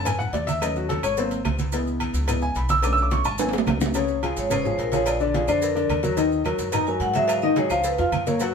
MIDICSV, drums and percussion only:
0, 0, Header, 1, 2, 480
1, 0, Start_track
1, 0, Tempo, 278164
1, 1061, Time_signature, 4, 2, 24, 8
1, 14742, End_track
2, 0, Start_track
2, 0, Title_t, "Drums"
2, 91, Note_on_c, 9, 56, 105
2, 100, Note_on_c, 9, 75, 71
2, 102, Note_on_c, 9, 70, 97
2, 112, Note_on_c, 9, 68, 111
2, 113, Note_on_c, 9, 63, 36
2, 113, Note_on_c, 9, 64, 79
2, 264, Note_off_c, 9, 56, 0
2, 272, Note_off_c, 9, 75, 0
2, 274, Note_off_c, 9, 70, 0
2, 285, Note_off_c, 9, 63, 0
2, 285, Note_off_c, 9, 64, 0
2, 285, Note_off_c, 9, 68, 0
2, 345, Note_on_c, 9, 63, 38
2, 345, Note_on_c, 9, 64, 73
2, 348, Note_on_c, 9, 70, 31
2, 518, Note_off_c, 9, 63, 0
2, 518, Note_off_c, 9, 64, 0
2, 520, Note_off_c, 9, 70, 0
2, 569, Note_on_c, 9, 56, 72
2, 587, Note_on_c, 9, 63, 38
2, 589, Note_on_c, 9, 66, 76
2, 589, Note_on_c, 9, 68, 69
2, 592, Note_on_c, 9, 70, 31
2, 741, Note_off_c, 9, 56, 0
2, 760, Note_off_c, 9, 63, 0
2, 762, Note_off_c, 9, 66, 0
2, 762, Note_off_c, 9, 68, 0
2, 764, Note_off_c, 9, 70, 0
2, 816, Note_on_c, 9, 56, 68
2, 821, Note_on_c, 9, 63, 89
2, 831, Note_on_c, 9, 70, 79
2, 838, Note_on_c, 9, 68, 87
2, 988, Note_off_c, 9, 56, 0
2, 994, Note_off_c, 9, 63, 0
2, 1004, Note_off_c, 9, 70, 0
2, 1011, Note_off_c, 9, 68, 0
2, 1063, Note_on_c, 9, 75, 72
2, 1069, Note_on_c, 9, 56, 109
2, 1069, Note_on_c, 9, 68, 118
2, 1072, Note_on_c, 9, 63, 37
2, 1077, Note_on_c, 9, 70, 92
2, 1236, Note_off_c, 9, 75, 0
2, 1242, Note_off_c, 9, 56, 0
2, 1242, Note_off_c, 9, 68, 0
2, 1244, Note_off_c, 9, 63, 0
2, 1250, Note_off_c, 9, 70, 0
2, 1311, Note_on_c, 9, 70, 34
2, 1313, Note_on_c, 9, 63, 37
2, 1483, Note_off_c, 9, 70, 0
2, 1485, Note_off_c, 9, 63, 0
2, 1542, Note_on_c, 9, 68, 71
2, 1551, Note_on_c, 9, 63, 95
2, 1554, Note_on_c, 9, 56, 77
2, 1562, Note_on_c, 9, 70, 32
2, 1715, Note_off_c, 9, 68, 0
2, 1723, Note_off_c, 9, 63, 0
2, 1727, Note_off_c, 9, 56, 0
2, 1734, Note_off_c, 9, 70, 0
2, 1781, Note_on_c, 9, 68, 118
2, 1781, Note_on_c, 9, 75, 72
2, 1789, Note_on_c, 9, 70, 76
2, 1807, Note_on_c, 9, 63, 37
2, 1953, Note_off_c, 9, 68, 0
2, 1954, Note_off_c, 9, 75, 0
2, 1962, Note_off_c, 9, 70, 0
2, 1979, Note_off_c, 9, 63, 0
2, 2021, Note_on_c, 9, 70, 90
2, 2029, Note_on_c, 9, 63, 34
2, 2030, Note_on_c, 9, 56, 115
2, 2194, Note_off_c, 9, 70, 0
2, 2202, Note_off_c, 9, 63, 0
2, 2203, Note_off_c, 9, 56, 0
2, 2258, Note_on_c, 9, 63, 35
2, 2263, Note_on_c, 9, 68, 73
2, 2264, Note_on_c, 9, 70, 31
2, 2430, Note_off_c, 9, 63, 0
2, 2435, Note_off_c, 9, 68, 0
2, 2437, Note_off_c, 9, 70, 0
2, 2497, Note_on_c, 9, 75, 72
2, 2503, Note_on_c, 9, 66, 72
2, 2503, Note_on_c, 9, 68, 108
2, 2505, Note_on_c, 9, 70, 32
2, 2509, Note_on_c, 9, 63, 85
2, 2511, Note_on_c, 9, 56, 72
2, 2669, Note_off_c, 9, 75, 0
2, 2676, Note_off_c, 9, 66, 0
2, 2676, Note_off_c, 9, 68, 0
2, 2678, Note_off_c, 9, 70, 0
2, 2682, Note_off_c, 9, 63, 0
2, 2684, Note_off_c, 9, 56, 0
2, 2735, Note_on_c, 9, 70, 83
2, 2740, Note_on_c, 9, 63, 84
2, 2751, Note_on_c, 9, 56, 75
2, 2908, Note_off_c, 9, 70, 0
2, 2912, Note_off_c, 9, 63, 0
2, 2924, Note_off_c, 9, 56, 0
2, 2973, Note_on_c, 9, 70, 95
2, 2980, Note_on_c, 9, 68, 90
2, 2992, Note_on_c, 9, 63, 34
2, 2998, Note_on_c, 9, 56, 112
2, 3145, Note_off_c, 9, 70, 0
2, 3152, Note_off_c, 9, 68, 0
2, 3164, Note_off_c, 9, 63, 0
2, 3171, Note_off_c, 9, 56, 0
2, 3230, Note_on_c, 9, 70, 35
2, 3240, Note_on_c, 9, 63, 38
2, 3403, Note_off_c, 9, 70, 0
2, 3413, Note_off_c, 9, 63, 0
2, 3454, Note_on_c, 9, 68, 118
2, 3454, Note_on_c, 9, 75, 63
2, 3466, Note_on_c, 9, 56, 80
2, 3473, Note_on_c, 9, 63, 60
2, 3477, Note_on_c, 9, 70, 33
2, 3626, Note_off_c, 9, 68, 0
2, 3627, Note_off_c, 9, 75, 0
2, 3638, Note_off_c, 9, 56, 0
2, 3645, Note_off_c, 9, 63, 0
2, 3649, Note_off_c, 9, 70, 0
2, 3696, Note_on_c, 9, 70, 79
2, 3702, Note_on_c, 9, 56, 74
2, 3868, Note_off_c, 9, 70, 0
2, 3875, Note_off_c, 9, 56, 0
2, 3929, Note_on_c, 9, 68, 115
2, 3930, Note_on_c, 9, 56, 113
2, 3938, Note_on_c, 9, 75, 77
2, 3940, Note_on_c, 9, 70, 98
2, 3947, Note_on_c, 9, 63, 34
2, 3947, Note_on_c, 9, 64, 81
2, 4101, Note_off_c, 9, 68, 0
2, 4103, Note_off_c, 9, 56, 0
2, 4110, Note_off_c, 9, 75, 0
2, 4113, Note_off_c, 9, 70, 0
2, 4120, Note_off_c, 9, 63, 0
2, 4120, Note_off_c, 9, 64, 0
2, 4169, Note_on_c, 9, 70, 32
2, 4181, Note_on_c, 9, 63, 38
2, 4342, Note_off_c, 9, 70, 0
2, 4354, Note_off_c, 9, 63, 0
2, 4400, Note_on_c, 9, 70, 33
2, 4417, Note_on_c, 9, 68, 69
2, 4419, Note_on_c, 9, 56, 75
2, 4433, Note_on_c, 9, 63, 37
2, 4572, Note_off_c, 9, 70, 0
2, 4589, Note_off_c, 9, 68, 0
2, 4591, Note_off_c, 9, 56, 0
2, 4606, Note_off_c, 9, 63, 0
2, 4641, Note_on_c, 9, 70, 84
2, 4645, Note_on_c, 9, 56, 73
2, 4649, Note_on_c, 9, 68, 89
2, 4655, Note_on_c, 9, 63, 87
2, 4814, Note_off_c, 9, 70, 0
2, 4817, Note_off_c, 9, 56, 0
2, 4821, Note_off_c, 9, 68, 0
2, 4828, Note_off_c, 9, 63, 0
2, 4876, Note_on_c, 9, 56, 104
2, 4888, Note_on_c, 9, 68, 118
2, 4889, Note_on_c, 9, 70, 89
2, 4889, Note_on_c, 9, 75, 70
2, 4911, Note_on_c, 9, 63, 37
2, 5048, Note_off_c, 9, 56, 0
2, 5060, Note_off_c, 9, 68, 0
2, 5061, Note_off_c, 9, 70, 0
2, 5062, Note_off_c, 9, 75, 0
2, 5084, Note_off_c, 9, 63, 0
2, 5129, Note_on_c, 9, 70, 35
2, 5146, Note_on_c, 9, 63, 37
2, 5301, Note_off_c, 9, 70, 0
2, 5319, Note_off_c, 9, 63, 0
2, 5360, Note_on_c, 9, 70, 34
2, 5372, Note_on_c, 9, 56, 76
2, 5373, Note_on_c, 9, 68, 79
2, 5378, Note_on_c, 9, 63, 99
2, 5533, Note_off_c, 9, 70, 0
2, 5544, Note_off_c, 9, 56, 0
2, 5546, Note_off_c, 9, 68, 0
2, 5550, Note_off_c, 9, 63, 0
2, 5600, Note_on_c, 9, 70, 77
2, 5614, Note_on_c, 9, 68, 114
2, 5615, Note_on_c, 9, 75, 72
2, 5631, Note_on_c, 9, 63, 36
2, 5772, Note_off_c, 9, 70, 0
2, 5786, Note_off_c, 9, 68, 0
2, 5788, Note_off_c, 9, 75, 0
2, 5804, Note_off_c, 9, 63, 0
2, 5834, Note_on_c, 9, 70, 95
2, 5855, Note_on_c, 9, 56, 113
2, 5857, Note_on_c, 9, 63, 35
2, 5857, Note_on_c, 9, 65, 108
2, 6007, Note_off_c, 9, 70, 0
2, 6020, Note_off_c, 9, 65, 0
2, 6020, Note_on_c, 9, 65, 94
2, 6028, Note_off_c, 9, 56, 0
2, 6030, Note_off_c, 9, 63, 0
2, 6085, Note_on_c, 9, 70, 31
2, 6094, Note_on_c, 9, 68, 75
2, 6096, Note_on_c, 9, 63, 39
2, 6098, Note_on_c, 9, 60, 103
2, 6180, Note_on_c, 9, 66, 113
2, 6192, Note_off_c, 9, 65, 0
2, 6258, Note_off_c, 9, 70, 0
2, 6267, Note_off_c, 9, 68, 0
2, 6269, Note_off_c, 9, 63, 0
2, 6270, Note_off_c, 9, 60, 0
2, 6325, Note_on_c, 9, 70, 32
2, 6331, Note_on_c, 9, 75, 68
2, 6335, Note_on_c, 9, 63, 97
2, 6341, Note_off_c, 9, 66, 0
2, 6341, Note_on_c, 9, 66, 86
2, 6341, Note_on_c, 9, 68, 113
2, 6346, Note_on_c, 9, 56, 71
2, 6346, Note_on_c, 9, 61, 103
2, 6498, Note_off_c, 9, 70, 0
2, 6504, Note_off_c, 9, 75, 0
2, 6507, Note_off_c, 9, 63, 0
2, 6514, Note_off_c, 9, 66, 0
2, 6514, Note_off_c, 9, 68, 0
2, 6519, Note_off_c, 9, 56, 0
2, 6519, Note_off_c, 9, 61, 0
2, 6568, Note_on_c, 9, 70, 83
2, 6572, Note_on_c, 9, 63, 85
2, 6583, Note_on_c, 9, 56, 71
2, 6583, Note_on_c, 9, 61, 109
2, 6657, Note_on_c, 9, 66, 91
2, 6740, Note_off_c, 9, 70, 0
2, 6744, Note_off_c, 9, 63, 0
2, 6756, Note_off_c, 9, 56, 0
2, 6756, Note_off_c, 9, 61, 0
2, 6800, Note_on_c, 9, 70, 90
2, 6815, Note_on_c, 9, 68, 91
2, 6819, Note_on_c, 9, 56, 110
2, 6830, Note_off_c, 9, 66, 0
2, 6973, Note_off_c, 9, 70, 0
2, 6988, Note_off_c, 9, 68, 0
2, 6992, Note_off_c, 9, 56, 0
2, 7040, Note_on_c, 9, 70, 35
2, 7059, Note_on_c, 9, 63, 36
2, 7212, Note_off_c, 9, 70, 0
2, 7231, Note_off_c, 9, 63, 0
2, 7297, Note_on_c, 9, 68, 107
2, 7302, Note_on_c, 9, 63, 59
2, 7305, Note_on_c, 9, 70, 31
2, 7309, Note_on_c, 9, 75, 62
2, 7311, Note_on_c, 9, 56, 76
2, 7470, Note_off_c, 9, 68, 0
2, 7474, Note_off_c, 9, 63, 0
2, 7478, Note_off_c, 9, 70, 0
2, 7481, Note_off_c, 9, 75, 0
2, 7483, Note_off_c, 9, 56, 0
2, 7535, Note_on_c, 9, 70, 70
2, 7539, Note_on_c, 9, 56, 78
2, 7707, Note_off_c, 9, 70, 0
2, 7711, Note_off_c, 9, 56, 0
2, 7775, Note_on_c, 9, 70, 94
2, 7784, Note_on_c, 9, 56, 112
2, 7786, Note_on_c, 9, 63, 33
2, 7786, Note_on_c, 9, 64, 80
2, 7789, Note_on_c, 9, 68, 109
2, 7797, Note_on_c, 9, 75, 72
2, 7947, Note_off_c, 9, 70, 0
2, 7956, Note_off_c, 9, 56, 0
2, 7958, Note_off_c, 9, 63, 0
2, 7958, Note_off_c, 9, 64, 0
2, 7962, Note_off_c, 9, 68, 0
2, 7969, Note_off_c, 9, 75, 0
2, 8029, Note_on_c, 9, 63, 37
2, 8029, Note_on_c, 9, 64, 73
2, 8030, Note_on_c, 9, 70, 31
2, 8201, Note_off_c, 9, 63, 0
2, 8201, Note_off_c, 9, 64, 0
2, 8202, Note_off_c, 9, 70, 0
2, 8259, Note_on_c, 9, 63, 36
2, 8261, Note_on_c, 9, 56, 73
2, 8266, Note_on_c, 9, 70, 29
2, 8277, Note_on_c, 9, 68, 70
2, 8432, Note_off_c, 9, 63, 0
2, 8434, Note_off_c, 9, 56, 0
2, 8439, Note_off_c, 9, 70, 0
2, 8449, Note_off_c, 9, 68, 0
2, 8486, Note_on_c, 9, 56, 75
2, 8493, Note_on_c, 9, 63, 85
2, 8501, Note_on_c, 9, 70, 79
2, 8507, Note_on_c, 9, 68, 80
2, 8659, Note_off_c, 9, 56, 0
2, 8666, Note_off_c, 9, 63, 0
2, 8674, Note_off_c, 9, 70, 0
2, 8680, Note_off_c, 9, 68, 0
2, 8728, Note_on_c, 9, 56, 106
2, 8736, Note_on_c, 9, 70, 85
2, 8741, Note_on_c, 9, 75, 71
2, 8745, Note_on_c, 9, 68, 109
2, 8747, Note_on_c, 9, 63, 33
2, 8901, Note_off_c, 9, 56, 0
2, 8909, Note_off_c, 9, 70, 0
2, 8913, Note_off_c, 9, 75, 0
2, 8918, Note_off_c, 9, 68, 0
2, 8920, Note_off_c, 9, 63, 0
2, 8977, Note_on_c, 9, 70, 32
2, 8988, Note_on_c, 9, 63, 38
2, 9149, Note_off_c, 9, 70, 0
2, 9161, Note_off_c, 9, 63, 0
2, 9222, Note_on_c, 9, 56, 73
2, 9223, Note_on_c, 9, 70, 29
2, 9226, Note_on_c, 9, 63, 97
2, 9233, Note_on_c, 9, 68, 73
2, 9395, Note_off_c, 9, 56, 0
2, 9395, Note_off_c, 9, 70, 0
2, 9399, Note_off_c, 9, 63, 0
2, 9406, Note_off_c, 9, 68, 0
2, 9454, Note_on_c, 9, 70, 76
2, 9459, Note_on_c, 9, 75, 72
2, 9470, Note_on_c, 9, 68, 116
2, 9476, Note_on_c, 9, 63, 38
2, 9626, Note_off_c, 9, 70, 0
2, 9631, Note_off_c, 9, 75, 0
2, 9642, Note_off_c, 9, 68, 0
2, 9649, Note_off_c, 9, 63, 0
2, 9698, Note_on_c, 9, 70, 85
2, 9704, Note_on_c, 9, 56, 118
2, 9710, Note_on_c, 9, 63, 31
2, 9870, Note_off_c, 9, 70, 0
2, 9876, Note_off_c, 9, 56, 0
2, 9883, Note_off_c, 9, 63, 0
2, 9938, Note_on_c, 9, 63, 37
2, 9949, Note_on_c, 9, 68, 70
2, 9953, Note_on_c, 9, 70, 29
2, 10110, Note_off_c, 9, 63, 0
2, 10122, Note_off_c, 9, 68, 0
2, 10125, Note_off_c, 9, 70, 0
2, 10173, Note_on_c, 9, 75, 66
2, 10174, Note_on_c, 9, 56, 71
2, 10179, Note_on_c, 9, 63, 91
2, 10182, Note_on_c, 9, 70, 30
2, 10184, Note_on_c, 9, 68, 103
2, 10345, Note_off_c, 9, 75, 0
2, 10347, Note_off_c, 9, 56, 0
2, 10351, Note_off_c, 9, 63, 0
2, 10354, Note_off_c, 9, 70, 0
2, 10357, Note_off_c, 9, 68, 0
2, 10405, Note_on_c, 9, 56, 73
2, 10419, Note_on_c, 9, 63, 85
2, 10421, Note_on_c, 9, 70, 82
2, 10577, Note_off_c, 9, 56, 0
2, 10592, Note_off_c, 9, 63, 0
2, 10593, Note_off_c, 9, 70, 0
2, 10647, Note_on_c, 9, 56, 103
2, 10649, Note_on_c, 9, 70, 84
2, 10657, Note_on_c, 9, 63, 34
2, 10659, Note_on_c, 9, 68, 95
2, 10819, Note_off_c, 9, 56, 0
2, 10821, Note_off_c, 9, 70, 0
2, 10829, Note_off_c, 9, 63, 0
2, 10831, Note_off_c, 9, 68, 0
2, 10900, Note_on_c, 9, 63, 37
2, 10905, Note_on_c, 9, 70, 34
2, 11072, Note_off_c, 9, 63, 0
2, 11078, Note_off_c, 9, 70, 0
2, 11121, Note_on_c, 9, 63, 62
2, 11130, Note_on_c, 9, 75, 61
2, 11132, Note_on_c, 9, 70, 30
2, 11140, Note_on_c, 9, 56, 71
2, 11141, Note_on_c, 9, 68, 107
2, 11293, Note_off_c, 9, 63, 0
2, 11303, Note_off_c, 9, 75, 0
2, 11304, Note_off_c, 9, 70, 0
2, 11312, Note_off_c, 9, 56, 0
2, 11314, Note_off_c, 9, 68, 0
2, 11366, Note_on_c, 9, 70, 73
2, 11367, Note_on_c, 9, 56, 70
2, 11539, Note_off_c, 9, 56, 0
2, 11539, Note_off_c, 9, 70, 0
2, 11600, Note_on_c, 9, 56, 116
2, 11602, Note_on_c, 9, 70, 87
2, 11612, Note_on_c, 9, 75, 73
2, 11613, Note_on_c, 9, 63, 35
2, 11613, Note_on_c, 9, 64, 78
2, 11617, Note_on_c, 9, 68, 106
2, 11773, Note_off_c, 9, 56, 0
2, 11774, Note_off_c, 9, 70, 0
2, 11784, Note_off_c, 9, 75, 0
2, 11786, Note_off_c, 9, 63, 0
2, 11786, Note_off_c, 9, 64, 0
2, 11789, Note_off_c, 9, 68, 0
2, 11856, Note_on_c, 9, 63, 35
2, 11857, Note_on_c, 9, 70, 29
2, 12029, Note_off_c, 9, 63, 0
2, 12030, Note_off_c, 9, 70, 0
2, 12079, Note_on_c, 9, 56, 68
2, 12092, Note_on_c, 9, 70, 31
2, 12099, Note_on_c, 9, 63, 39
2, 12101, Note_on_c, 9, 68, 74
2, 12252, Note_off_c, 9, 56, 0
2, 12265, Note_off_c, 9, 70, 0
2, 12271, Note_off_c, 9, 63, 0
2, 12274, Note_off_c, 9, 68, 0
2, 12313, Note_on_c, 9, 56, 73
2, 12331, Note_on_c, 9, 70, 77
2, 12338, Note_on_c, 9, 63, 89
2, 12345, Note_on_c, 9, 68, 82
2, 12486, Note_off_c, 9, 56, 0
2, 12504, Note_off_c, 9, 70, 0
2, 12511, Note_off_c, 9, 63, 0
2, 12518, Note_off_c, 9, 68, 0
2, 12557, Note_on_c, 9, 56, 112
2, 12573, Note_on_c, 9, 75, 68
2, 12575, Note_on_c, 9, 68, 111
2, 12581, Note_on_c, 9, 70, 87
2, 12588, Note_on_c, 9, 63, 36
2, 12729, Note_off_c, 9, 56, 0
2, 12746, Note_off_c, 9, 75, 0
2, 12747, Note_off_c, 9, 68, 0
2, 12753, Note_off_c, 9, 70, 0
2, 12761, Note_off_c, 9, 63, 0
2, 12803, Note_on_c, 9, 70, 33
2, 12820, Note_on_c, 9, 63, 37
2, 12975, Note_off_c, 9, 70, 0
2, 12993, Note_off_c, 9, 63, 0
2, 13046, Note_on_c, 9, 56, 74
2, 13047, Note_on_c, 9, 70, 29
2, 13052, Note_on_c, 9, 63, 99
2, 13061, Note_on_c, 9, 68, 73
2, 13219, Note_off_c, 9, 56, 0
2, 13220, Note_off_c, 9, 70, 0
2, 13225, Note_off_c, 9, 63, 0
2, 13233, Note_off_c, 9, 68, 0
2, 13285, Note_on_c, 9, 70, 70
2, 13288, Note_on_c, 9, 75, 68
2, 13302, Note_on_c, 9, 68, 110
2, 13306, Note_on_c, 9, 63, 36
2, 13457, Note_off_c, 9, 70, 0
2, 13460, Note_off_c, 9, 75, 0
2, 13475, Note_off_c, 9, 68, 0
2, 13479, Note_off_c, 9, 63, 0
2, 13523, Note_on_c, 9, 70, 95
2, 13534, Note_on_c, 9, 56, 108
2, 13543, Note_on_c, 9, 63, 34
2, 13695, Note_off_c, 9, 70, 0
2, 13706, Note_off_c, 9, 56, 0
2, 13715, Note_off_c, 9, 63, 0
2, 13775, Note_on_c, 9, 70, 32
2, 13778, Note_on_c, 9, 68, 74
2, 13785, Note_on_c, 9, 63, 37
2, 13948, Note_off_c, 9, 70, 0
2, 13951, Note_off_c, 9, 68, 0
2, 13958, Note_off_c, 9, 63, 0
2, 14015, Note_on_c, 9, 70, 32
2, 14018, Note_on_c, 9, 68, 112
2, 14020, Note_on_c, 9, 56, 67
2, 14020, Note_on_c, 9, 63, 88
2, 14022, Note_on_c, 9, 75, 68
2, 14187, Note_off_c, 9, 70, 0
2, 14191, Note_off_c, 9, 68, 0
2, 14193, Note_off_c, 9, 56, 0
2, 14193, Note_off_c, 9, 63, 0
2, 14194, Note_off_c, 9, 75, 0
2, 14266, Note_on_c, 9, 70, 78
2, 14269, Note_on_c, 9, 56, 71
2, 14275, Note_on_c, 9, 63, 84
2, 14438, Note_off_c, 9, 70, 0
2, 14441, Note_off_c, 9, 56, 0
2, 14448, Note_off_c, 9, 63, 0
2, 14488, Note_on_c, 9, 70, 86
2, 14502, Note_on_c, 9, 63, 36
2, 14505, Note_on_c, 9, 56, 111
2, 14512, Note_on_c, 9, 68, 93
2, 14661, Note_off_c, 9, 70, 0
2, 14675, Note_off_c, 9, 63, 0
2, 14678, Note_off_c, 9, 56, 0
2, 14684, Note_off_c, 9, 68, 0
2, 14742, End_track
0, 0, End_of_file